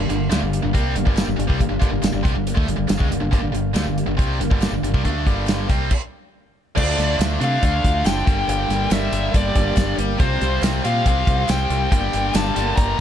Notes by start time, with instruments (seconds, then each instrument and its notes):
Already playing: steel-string acoustic guitar D3 G3 A#3 D4 G4
0.09 fingered electric bass G1, distorted electric guitar G2 D3, steel-string acoustic guitar A#3 D4 G4, closed hi-hat
0.13 steel-string acoustic guitar G3
0.30 fingered electric bass D2, steel-string acoustic guitar G2 D3 G3 A#3, distorted electric guitar D3 A3, snare, clap, closed hi-hat, tambourine
0.34 steel-string acoustic guitar D4 G4
0.40 fingered electric bass G1, distorted electric guitar G2 D3
0.53 steel-string acoustic guitar G3 A#3 D4 G4, closed hi-hat
0.63 fingered electric bass G1, distorted electric guitar G2 D3
0.73 fingered electric bass C2, distorted electric guitar C3 G3 C4, steel-string acoustic guitar G3 A#3 D4, kick, closed hi-hat
0.78 steel-string acoustic guitar G4
0.95 fingered electric bass G1, distorted electric guitar G2 D3, steel-string acoustic guitar A#3 D4 G4, closed hi-hat
0.99 steel-string acoustic guitar G3
1.05 fingered electric bass G1, distorted electric guitar G2 D3 G3, kick
1.16 steel-string acoustic guitar G2 D3 G3 A#3 D4 G4, snare, clap, closed hi-hat, tambourine
1.26 fingered electric bass G1, distorted electric guitar G2 D3
1.36 fingered electric bass G1, distorted electric guitar G2 D3, steel-string acoustic guitar A#3 D4 G4, closed hi-hat
1.41 steel-string acoustic guitar G3
1.47 fingered electric bass C2, distorted electric guitar C3 G3, kick
1.59 fingered electric bass G1, distorted electric guitar G2 D3, steel-string acoustic guitar G2 D3 G3 A#3 D4 G4, kick, closed hi-hat
1.69 fingered electric bass G1, distorted electric guitar G2 D3
1.80 fingered electric bass G1, distorted electric guitar G2 D3, steel-string acoustic guitar G3 A#3 D4 G4, kick, closed hi-hat
1.91 fingered electric bass G1, distorted electric guitar G2 D3
2.02 fingered electric bass G1, distorted electric guitar G2 D3, steel-string acoustic guitar G2 D3 G3 A#3 D4 G4, snare, clap, closed hi-hat, tambourine
2.13 fingered electric bass G1, distorted electric guitar G2 D3
2.23 fingered electric bass C2, distorted electric guitar C3 G3, steel-string acoustic guitar G3 A#3 D4 G4, kick, closed hi-hat
2.34 fingered electric bass G1, distorted electric guitar G2 D3
2.47 steel-string acoustic guitar G3 A#3 D4 G4, closed hi-hat
2.55 fingered electric bass D2, distorted electric guitar D3 A3, kick
2.66 fingered electric bass G1, distorted electric guitar G2 D3, steel-string acoustic guitar G3 A#3 D4 G4, closed hi-hat
2.76 fingered electric bass G1, distorted electric guitar G2 D3
2.88 fingered electric bass G1, distorted electric guitar G2 D3, steel-string acoustic guitar G2 D3 G3 A#3 D4 G4, snare, clap, closed hi-hat, tambourine
2.98 fingered electric bass C#2, distorted electric guitar C#3 G#3, kick
3.09 fingered electric bass G1, distorted electric guitar G2 D3, steel-string acoustic guitar G3 A#3 D4 G4, closed hi-hat
3.20 fingered electric bass G1, distorted electric guitar G2 D3
3.31 fingered electric bass G1, distorted electric guitar G2 D3, steel-string acoustic guitar G2 D3 G3 A#3 D4 G4, kick, closed hi-hat
3.41 fingered electric bass G1, distorted electric guitar G2 D3
3.52 fingered electric bass G1, distorted electric guitar G2 D3, steel-string acoustic guitar G3 A#3 D4 G4, closed hi-hat
3.74 fingered electric bass D2, steel-string acoustic guitar G2 D3 G3 A#3 D4 G4, distorted electric guitar D3 A3, snare, clap, closed hi-hat, tambourine
3.85 fingered electric bass G1, distorted electric guitar G2 D3
3.96 steel-string acoustic guitar G3 A#3 D4 G4, closed hi-hat
4.06 fingered electric bass G1, distorted electric guitar G2 D3
4.17 fingered electric bass C2, distorted electric guitar C3 G3 C4, steel-string acoustic guitar G3 A#3 D4, kick, closed hi-hat
4.21 steel-string acoustic guitar G4
4.39 fingered electric bass G1, distorted electric guitar G2 D3, steel-string acoustic guitar G3 A#3 D4 G4, closed hi-hat
4.50 fingered electric bass G1, distorted electric guitar G2 D3 G3, kick
4.61 steel-string acoustic guitar G2 D3 G3 A#3 D4 G4, snare, clap, closed hi-hat, tambourine
4.71 fingered electric bass G1, distorted electric guitar G2 D3
4.83 fingered electric bass G1, distorted electric guitar G2 D3, steel-string acoustic guitar G3 A#3 D4 G4, closed hi-hat
4.94 fingered electric bass C2, distorted electric guitar C3 G3, kick
5.04 fingered electric bass D2, steel-string acoustic guitar G2 D3 G3 A#3 D4 G4, distorted electric guitar D3 A3 D4, kick, closed hi-hat
5.26 fingered electric bass G1, distorted electric guitar G2 D3 G3, steel-string acoustic guitar G3 A#3 D4 G4, kick, closed hi-hat
5.47 steel-string acoustic guitar G2 D3 G3 A#3 D4 G4, snare, clap, closed hi-hat, tambourine
5.68 fingered electric bass C2, distorted electric guitar C3 G3 C4, steel-string acoustic guitar G3 A#3 D4 G4, kick, closed hi-hat
5.91 kick, crash
6.76 fingered electric bass D2, distorted electric guitar D3 A3 D4, steel-string acoustic guitar D3 F3 D4 F4 A4, string machine A3 D4 F4 A4, lead electric guitar D5, kick, crash
6.97 fingered electric bass D2, steel-string acoustic guitar F4 A4, snare, closed hi-hat
7.18 fingered electric bass D2, steel-string acoustic guitar D3 F3 D4 F4 A4, snare, clap, closed hi-hat, tambourine
7.40 fingered electric bass C3, distorted electric guitar D3 A3 D4, steel-string acoustic guitar D4 F4 A4, closed hi-hat
7.44 lead electric guitar F5
7.62 fingered electric bass D2, steel-string acoustic guitar F3 D4 F4, lead electric guitar F5, kick, closed hi-hat
7.83 fingered electric bass D2, steel-string acoustic guitar D4 F4 A4, kick, closed hi-hat
8.05 fingered electric bass F#1, steel-string acoustic guitar D3 F3 D4 F4 A4, lead electric guitar G5, snare, clap, closed hi-hat, tambourine
8.25 fingered electric bass G1, distorted electric guitar G2 D3 G3, steel-string acoustic guitar G3 A#3 D4 G4, string machine A#3 D4 G4 A#4, kick, closed hi-hat
8.47 fingered electric bass G1, steel-string acoustic guitar G2 D3 G3 A#3 D4 G4, lead electric guitar G5, closed hi-hat
8.69 fingered electric bass G1, steel-string acoustic guitar G3 A#3 D4 G4, snare, closed hi-hat
8.89 fingered electric bass G1, steel-string acoustic guitar G2 D3 G3 A#3 D4 G4, distorted electric guitar G2 D3, lead electric guitar E5, snare, clap, closed hi-hat, tambourine
8.94 distorted electric guitar G3
9.12 fingered electric bass G1, steel-string acoustic guitar G3 A#3 D4 G4, closed hi-hat
9.33 fingered electric bass G1, steel-string acoustic guitar G3 A#3 D4 G4, lead electric guitar D5, kick, closed hi-hat
9.55 fingered electric bass G1, steel-string acoustic guitar G3 A#3 D4 G4, kick, closed hi-hat
9.77 fingered electric bass G1, steel-string acoustic guitar G2 D3 G3 A#3 D4 G4, kick, snare, clap, closed hi-hat, tambourine
9.98 fingered electric bass G1, steel-string acoustic guitar G3 A#3 D4 G4, closed hi-hat
10.18 fingered electric bass C2, distorted electric guitar C3 G3, steel-string acoustic guitar C3 G3 C4, string machine C4 F4 G4 C5, lead electric guitar C5, kick, closed hi-hat
10.22 distorted electric guitar C4, steel-string acoustic guitar F4 G4
10.41 fingered electric bass C2, steel-string acoustic guitar C4 F4 G4, snare, closed hi-hat
10.62 fingered electric bass C2, steel-string acoustic guitar C3 G3 C4 F4 G4, snare, clap, closed hi-hat, tambourine
10.83 fingered electric bass A#2, distorted electric guitar G3 C4, steel-string acoustic guitar C4 F4 G4, lead electric guitar F5, closed hi-hat
10.87 distorted electric guitar C3
11.04 fingered electric bass C2, steel-string acoustic guitar G3 C4 F4 G4, lead electric guitar F5, kick, closed hi-hat
11.26 fingered electric bass C2, steel-string acoustic guitar C4 F4 G4, kick, closed hi-hat
11.48 fingered electric bass C2, steel-string acoustic guitar C3 G3 C4 F4 G4, lead electric guitar G5, snare, clap, closed hi-hat, tambourine
11.70 fingered electric bass C2, steel-string acoustic guitar C4 F4 G4, closed hi-hat
11.90 fingered electric bass G1, distorted electric guitar G2 D3, steel-string acoustic guitar G2 D3 G3 A#3 D4 G4, string machine D4 G4 A#4 D5, lead electric guitar G5, kick, closed hi-hat
11.94 distorted electric guitar G3
12.12 fingered electric bass G1, steel-string acoustic guitar G3 A#3 D4 G4, closed hi-hat
12.34 fingered electric bass G1, steel-string acoustic guitar G2 D3 G3 A#3 D4 G4, lead electric guitar A5, snare, clap, closed hi-hat, tambourine
12.55 fingered electric bass G1, distorted electric guitar D3 G3, steel-string acoustic guitar G3 A#3 D4 G4, closed hi-hat
12.59 distorted electric guitar G2
12.76 fingered electric bass G1, steel-string acoustic guitar G3 A#3 D4, lead electric guitar A#5, kick, closed hi-hat